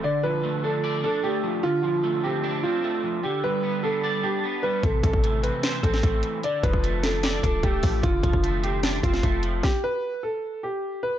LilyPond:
<<
  \new Staff \with { instrumentName = "Grand piano" } { \time 4/4 \key f \lydian \tempo 4 = 150 d''8 b'4 a'4 a'8 g'4 | f'8 f'4 g'4 f'4. | g'8 b'4 a'4 g'4 b'8 | a'8 a'4 b'4 a'4. |
d''8 b'4 a'4 a'8 g'4 | f'8 f'4 g'4 f'4. | g'8 b'4 a'4 g'4 b'8 | }
  \new Staff \with { instrumentName = "Clean electric guitar" } { \time 4/4 \key f \lydian d8 f8 a8 d'8 d''8 d'8 a8 f8 | d8 f8 a8 c'8 d'8 c'8 a8 f8 | d8 g8 b8 d'8 d''8 d'8 b8 g8 | c8 e8 a8 c'8 c''8 c'8 a8 e8 |
d8 f8 a8 d'8 d''8 d'8 a8 f8 | d8 f8 a8 c'8 d'8 c'8 a8 f8 | r1 | }
  \new Staff \with { instrumentName = "808-style bass" } { \clef bass \time 4/4 \key f \lydian r1 | r1 | r1 | a,,8 a,,4~ a,,16 r8. a,,8 a,,8 r8 |
r8 f,,2 d,,8 d,,8 a,,8 | f,,8 f,,16 f,,4.~ f,,16 f,,8 f,,4 | r1 | }
  \new DrumStaff \with { instrumentName = "Drums" } \drummode { \time 4/4 r4 r4 r4 r4 | r4 r4 r4 r4 | r4 r4 r4 r4 | <hh bd>8 <hh bd>16 bd16 hh8 hh8 <hh sn>8 <hh bd>16 sn16 <hh bd>8 hh8 |
hh8 <hh bd>16 bd16 hh8 <hh sn>8 <hh sn>8 <hh bd>8 <hh bd>8 <hho bd>8 | <hh bd>8 <hh bd>16 bd16 hh8 hh8 <hh sn>8 <hh bd>16 sn16 <hh bd>8 hh8 | <bd sn>4 r4 r4 r4 | }
>>